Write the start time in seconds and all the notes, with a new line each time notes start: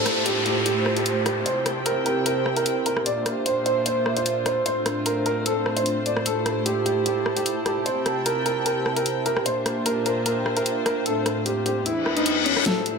Already playing: A2 A3 E4 G4 A4 C5 A5, downlifter
0.06 cross-stick, closed hi-hat
0.26 G4, closed hi-hat
0.46 G4, closed hi-hat
0.66 G4, closed hi-hat
0.86 cross-stick
0.97 G4, closed hi-hat
1.06 closed hi-hat
1.26 G4, cross-stick, closed hi-hat
1.46 C3 C4 E4 C5 E5 G5, closed hi-hat
1.66 cross-stick, closed hi-hat
1.86 A#4, closed hi-hat
2.06 A#4, closed hi-hat
2.26 A#4, closed hi-hat
2.46 cross-stick
2.56 A#4, closed hi-hat
2.66 closed hi-hat
2.86 A#4, closed hi-hat
2.97 cross-stick
3.06 A#2 A#3 D4 F4 C5 D5, closed hi-hat
3.26 cross-stick, closed hi-hat
3.46 C5, closed hi-hat
3.66 C5, closed hi-hat
3.86 C5, closed hi-hat
4.06 cross-stick
4.17 C5, closed hi-hat
4.26 closed hi-hat
4.46 C5, cross-stick, closed hi-hat
4.66 A2 A3 C4 C5, closed hi-hat
4.86 cross-stick, closed hi-hat
4.99 A5
5.06 A#4, closed hi-hat
5.26 A#4, closed hi-hat
5.46 A4, closed hi-hat
5.66 cross-stick
5.77 C5, closed hi-hat
5.86 closed hi-hat
6.06 D5, closed hi-hat
6.17 cross-stick
6.26 E4 G4 A4, closed hi-hat
6.46 cross-stick, closed hi-hat
6.66 G4, closed hi-hat
6.86 G4, closed hi-hat
7.06 G4, closed hi-hat
7.26 cross-stick
7.36 G4, closed hi-hat
7.46 closed hi-hat
7.66 G4, cross-stick, closed hi-hat
7.86 C3 C4 C5 E5 G5, closed hi-hat
8.06 cross-stick, closed hi-hat
8.26 A#4, closed hi-hat
8.46 A#4, closed hi-hat
8.66 A#4, closed hi-hat
8.86 cross-stick
8.96 A#4, closed hi-hat
9.06 closed hi-hat
9.26 A#4, closed hi-hat
9.37 cross-stick
9.46 A#2 A#3 D4 F4 C5, closed hi-hat
9.66 cross-stick, closed hi-hat
9.86 A#4, closed hi-hat
10.06 A#4, closed hi-hat
10.26 A#4, closed hi-hat
10.46 cross-stick
10.57 A#4, closed hi-hat
10.66 closed hi-hat
10.86 A#4, cross-stick, closed hi-hat
11.06 A2 A3 C4 A4, closed hi-hat
11.26 cross-stick, closed hi-hat
11.46 G4, closed hi-hat
11.66 G4, closed hi-hat
11.86 E2 E3 B3 E4 G#4 B4, closed hi-hat, reverse cymbal
12.06 cross-stick
12.17 D#4, closed hi-hat
12.26 closed hi-hat
12.46 C#4, closed hi-hat
12.57 cross-stick
12.66 A2 A3 E4 G4 A4 C5, snare, closed hi-hat, riser
12.86 closed hi-hat